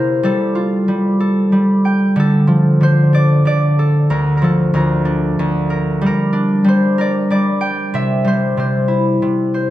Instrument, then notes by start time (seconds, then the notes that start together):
harp
Already playing: C3 A#3 E4 G4 A#4 C5
0.23 G3 A4
0.55 F4
0.88 G3
1.20 A4
1.52 G3
1.85 G5
2.16 D3 A4
2.47 F3
2.81 D3 C5
3.13 D4 D5
3.45 D3 D5
3.79 A4
4.10 D2 A#4
4.37 A#4
4.42 F3 A4
4.74 D2 A#4
5.05 D4
5.39 D2
5.70 A#4
6.01 G3
6.06 A#4
6.33 D4
6.64 G3 C5
6.98 A#4 D5
7.30 G3 D5
7.61 G5
7.94 C3 E5
8.24 G3 C5
8.57 C3 C5
8.88 E4
9.22 C3
9.54 C5